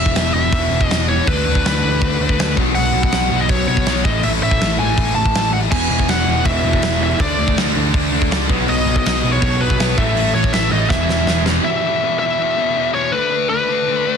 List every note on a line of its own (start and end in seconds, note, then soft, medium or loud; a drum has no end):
0.00 0.11 E1 medium
0.00 0.14 E2 medium
0.00 0.51 E2 loud
0.00 0.14 B2 medium
0.00 0.52 B2 loud
0.00 0.15 E3 medium
0.00 0.53 E3 loud
0.00 0.33 E5 medium
0.06 kick loud
0.14 0.30 E1 medium
0.14 0.33 E2 medium
0.14 0.33 B2 loud
0.14 0.33 E3 medium
0.14 snare loud
0.14 open hi-hat medium
0.34 0.49 E1 medium
0.34 0.52 E2 medium
0.34 0.52 B2 loud
0.34 0.52 E3 loud
0.34 0.83 E5 loud
0.52 0.67 E1 loud
0.52 0.70 E2 loud
0.52 0.71 B2 loud
0.52 0.71 E3 loud
0.52 kick loud
0.52 open hi-hat medium
0.70 0.85 E1 loud
0.70 0.88 E2 medium
0.70 0.89 B2 medium
0.70 0.89 E3 loud
0.81 1.04 D#5 loud
0.81 kick loud
0.89 1.19 E1 medium
0.89 1.07 E2 medium
0.89 1.08 B2 loud
0.89 1.08 E3 loud
0.89 snare loud
0.89 open hi-hat medium
1.09 1.26 E2 medium
1.09 1.26 B2 medium
1.09 1.26 E3 loud
1.09 1.28 C#5 medium
1.26 1.42 D2 loud
1.26 1.44 D3 loud
1.26 1.45 A3 loud
1.26 1.46 D4 loud
1.26 1.66 B4 medium
1.26 kick loud
1.26 open hi-hat medium
1.45 1.61 D2 medium
1.45 1.63 D3 medium
1.45 1.64 A3 medium
1.45 1.64 D4 medium
1.55 kick medium
1.65 1.80 D2 loud
1.65 1.82 D3 medium
1.65 1.83 A3 medium
1.65 1.83 D4 loud
1.65 2.54 B4 medium
1.65 snare loud
1.65 open hi-hat medium
1.83 1.98 D2 medium
1.83 2.01 D3 medium
1.83 2.01 A3 medium
1.83 2.02 D4 loud
2.01 2.16 D2 loud
2.01 2.19 D3 loud
2.01 2.20 A3 loud
2.01 2.20 D4 loud
2.01 kick loud
2.01 open hi-hat medium
2.20 2.35 D2 medium
2.20 2.37 D3 medium
2.20 2.38 A3 loud
2.20 2.38 D4 loud
2.29 kick medium
2.38 2.54 D2 medium
2.38 2.56 D3 medium
2.38 2.56 A3 medium
2.38 2.56 D4 loud
2.38 snare loud
2.38 open hi-hat medium
2.56 2.72 B1 loud
2.56 2.74 B2 loud
2.56 2.74 F#3 loud
2.56 2.74 B3 loud
2.56 kick loud
2.75 2.90 B1 loud
2.75 2.92 B2 loud
2.75 2.93 F#3 loud
2.75 2.93 B3 loud
2.75 3.02 F#5 loud
2.75 open hi-hat medium
2.93 3.09 B1 loud
2.93 3.11 B2 medium
2.93 3.12 F#3 loud
2.93 3.12 B3 medium
3.03 3.42 F#5 loud
3.03 kick medium
3.12 3.28 B1 loud
3.12 3.29 B2 medium
3.12 3.30 F#3 loud
3.12 3.30 B3 medium
3.12 snare loud
3.12 open hi-hat medium
3.31 3.46 B1 loud
3.31 3.47 B2 medium
3.31 3.48 F#3 medium
3.31 3.48 B3 loud
3.41 3.50 D#5 medium
3.49 3.64 B1 loud
3.49 3.67 B2 loud
3.49 3.67 F#3 loud
3.49 3.68 B3 loud
3.49 3.67 C#5 medium
3.49 kick loud
3.49 open hi-hat medium
3.68 3.83 B1 medium
3.68 3.86 B2 medium
3.68 3.86 F#3 medium
3.68 3.86 B3 medium
3.68 4.04 C#5 loud
3.77 kick medium
3.86 4.01 B1 medium
3.86 4.04 B2 medium
3.86 4.04 F#3 loud
3.86 4.04 B3 loud
3.86 snare loud
3.86 open hi-hat medium
4.05 4.20 A1 loud
4.05 4.23 A2 loud
4.05 4.25 E3 loud
4.05 4.24 A3 loud
4.05 4.24 D#5 loud
4.05 kick loud
4.23 4.39 A1 loud
4.23 4.41 A2 medium
4.23 4.42 E3 loud
4.23 4.42 A3 loud
4.23 4.29 E5 loud
4.23 open hi-hat medium
4.42 4.57 A1 loud
4.42 4.60 A2 medium
4.42 4.62 E3 medium
4.42 4.61 A3 medium
4.42 4.79 E5 loud
4.51 kick medium
4.61 4.76 A1 loud
4.61 4.78 A2 medium
4.61 4.80 E3 loud
4.61 4.80 A3 loud
4.61 snare loud
4.61 open hi-hat medium
4.79 4.94 A1 medium
4.79 4.96 A2 medium
4.79 4.97 E3 loud
4.79 4.97 A3 loud
4.79 5.15 G#5 loud
4.97 5.13 A1 loud
4.97 5.15 A2 medium
4.97 5.16 E3 loud
4.97 5.16 A3 loud
4.97 kick loud
4.97 open hi-hat medium
5.15 5.31 A1 medium
5.15 5.34 A2 medium
5.15 5.34 E3 medium
5.15 5.35 A3 medium
5.15 5.50 A5 loud
5.26 kick loud
5.35 5.65 A1 medium
5.35 5.52 A2 medium
5.35 5.53 E3 medium
5.35 5.53 A3 loud
5.35 snare loud
5.35 open hi-hat medium
5.53 5.71 A2 medium
5.53 5.71 E3 medium
5.53 5.71 A3 loud
5.53 5.58 F#5 loud
5.71 5.87 E1 loud
5.71 5.89 E2 medium
5.71 5.89 B2 loud
5.71 5.90 E3 loud
5.71 6.06 G#5 loud
5.71 kick loud
5.71 crash loud
5.90 6.05 E1 medium
5.90 6.08 E2 medium
5.90 6.08 B2 medium
5.90 6.09 E3 medium
5.99 kick medium
6.08 6.24 E1 loud
6.08 6.26 E2 medium
6.08 6.26 B2 loud
6.08 6.26 E3 loud
6.08 6.47 F#5 loud
6.08 snare loud
6.08 open hi-hat medium
6.27 6.43 E1 medium
6.27 6.44 E2 loud
6.27 6.45 B2 loud
6.27 6.45 E3 loud
6.45 6.61 E1 loud
6.45 6.63 E2 medium
6.45 6.64 B2 loud
6.45 6.64 E3 loud
6.45 7.02 E5 loud
6.45 kick loud
6.45 open hi-hat medium
6.65 6.79 E1 loud
6.65 6.82 E2 medium
6.65 6.83 B2 medium
6.65 6.83 E3 loud
6.73 kick medium
6.82 7.12 E1 loud
6.82 7.01 E2 medium
6.82 7.02 B2 loud
6.82 7.02 E3 loud
6.82 snare loud
6.82 open hi-hat medium
7.02 7.19 E2 medium
7.02 7.19 B2 medium
7.02 7.20 E3 loud
7.02 7.20 E5 medium
7.20 7.35 D2 loud
7.20 7.37 D3 loud
7.20 7.38 A3 loud
7.20 7.39 D4 loud
7.20 7.55 D5 medium
7.20 kick loud
7.20 open hi-hat medium
7.39 7.54 D2 loud
7.39 7.56 D3 medium
7.39 7.57 A3 medium
7.39 7.57 D4 loud
7.48 kick loud
7.57 7.72 D2 loud
7.57 7.75 D3 medium
7.57 7.75 A3 medium
7.57 7.75 D4 loud
7.57 snare loud
7.57 open hi-hat medium
7.76 7.91 D2 loud
7.76 7.93 D3 medium
7.76 7.94 A3 medium
7.76 7.94 D4 loud
7.94 8.09 D2 loud
7.94 8.12 D3 loud
7.94 8.12 A3 loud
7.94 8.13 D4 loud
7.94 kick loud
7.94 open hi-hat medium
8.13 8.28 D2 medium
8.13 8.30 D3 medium
8.13 8.30 A3 medium
8.13 8.30 D4 medium
8.22 kick medium
8.31 8.46 C#2 medium
8.31 8.48 D3 loud
8.31 8.49 A3 loud
8.31 8.49 D4 loud
8.31 snare loud
8.31 open hi-hat medium
8.49 8.64 B1 medium
8.49 8.66 B2 loud
8.49 8.67 F#3 loud
8.49 8.67 B3 loud
8.49 kick loud
8.67 8.83 B1 loud
8.67 8.86 B2 medium
8.67 8.86 F#3 loud
8.67 8.86 B3 loud
8.67 8.96 D#5 loud
8.67 open hi-hat medium
8.86 9.01 B1 medium
8.86 9.05 B2 medium
8.86 9.05 F#3 medium
8.86 9.06 B3 loud
8.96 9.32 D#5 loud
8.96 kick loud
9.06 9.20 B1 medium
9.06 9.23 B2 medium
9.06 9.23 F#3 medium
9.06 9.24 B3 loud
9.06 snare loud
9.06 open hi-hat medium
9.24 9.39 B1 medium
9.24 9.41 B2 medium
9.24 9.42 F#3 medium
9.24 9.42 B3 loud
9.32 9.61 C#5 loud
9.42 9.57 B1 loud
9.42 9.59 B2 loud
9.42 9.60 F#3 loud
9.42 9.60 B3 loud
9.42 kick loud
9.42 open hi-hat medium
9.60 9.76 B1 medium
9.60 9.78 B2 medium
9.60 9.79 F#3 medium
9.60 9.79 B3 loud
9.60 9.99 B4 loud
9.70 kick medium
9.79 9.94 B1 medium
9.79 9.97 B2 medium
9.79 9.97 F#3 loud
9.79 9.97 B3 loud
9.79 snare loud
9.79 open hi-hat medium
9.98 10.13 A1 loud
9.98 10.14 A2 loud
9.98 10.15 E3 loud
9.98 10.15 A3 loud
9.98 10.32 E5 loud
9.98 kick loud
10.15 10.31 A1 loud
10.15 10.33 A2 medium
10.15 10.34 E3 loud
10.15 10.34 A3 loud
10.15 open hi-hat medium
10.34 10.50 A1 medium
10.34 10.53 A2 medium
10.34 10.53 E3 medium
10.34 10.54 A3 medium
10.34 10.53 C#5 loud
10.44 kick medium
10.53 10.68 A1 loud
10.53 10.72 A2 medium
10.53 10.72 E3 loud
10.53 10.73 A3 medium
10.53 10.71 E5 loud
10.53 snare loud
10.53 open hi-hat medium
10.72 10.87 A1 medium
10.72 10.90 A2 medium
10.72 10.90 E3 loud
10.72 10.90 A3 loud
10.72 10.89 D#5 loud
10.89 11.05 E1 loud
10.89 11.08 E2 loud
10.89 11.09 B2 loud
10.89 11.09 E3 loud
10.89 11.42 E5 loud
10.89 kick loud
10.89 snare medium
11.09 11.24 E1 medium
11.09 11.28 E2 medium
11.09 11.28 B2 medium
11.09 11.28 E3 loud
11.09 snare medium
11.27 11.57 E1 loud
11.27 11.45 E2 medium
11.27 11.46 B2 loud
11.27 11.47 E3 loud
11.27 snare loud
11.46 11.64 E2 medium
11.46 11.64 B2 medium
11.46 11.64 E3 loud
11.46 snare loud
11.64 11.83 E2 medium
11.64 11.83 B2 loud
11.64 11.83 E3 loud
11.64 12.18 E5 medium
11.84 12.01 E2 medium
11.84 12.01 B2 medium
11.84 12.02 E3 loud
12.02 12.20 E2 medium
12.02 12.20 B2 loud
12.02 12.21 E3 medium
12.19 12.37 E2 medium
12.19 12.38 B2 medium
12.19 12.39 E3 loud
12.19 12.90 E5 loud
12.39 12.56 E2 loud
12.39 12.56 B2 medium
12.39 12.57 E3 loud
12.57 12.74 E2 medium
12.57 12.74 B2 medium
12.57 12.75 E3 medium
12.76 12.93 E2 loud
12.76 12.93 B2 loud
12.76 12.94 E3 loud
12.94 13.12 E2 medium
12.94 13.11 B2 medium
12.94 13.12 E3 loud
12.94 13.13 C#5 medium
13.11 13.29 D3 loud
13.11 13.29 A3 loud
13.11 13.30 D4 loud
13.11 13.48 B4 medium
13.30 13.48 D3 medium
13.30 13.49 A3 loud
13.30 13.49 D4 loud
13.49 13.67 D3 medium
13.49 13.67 A3 loud
13.49 13.68 D4 loud
13.49 14.17 B4 medium
13.68 13.86 D3 medium
13.68 13.87 A3 loud
13.68 13.87 D4 loud
13.87 14.04 D3 loud
13.87 14.05 A3 loud
13.87 14.05 D4 loud
14.05 14.17 D3 medium
14.05 14.17 A3 medium
14.05 14.17 D4 loud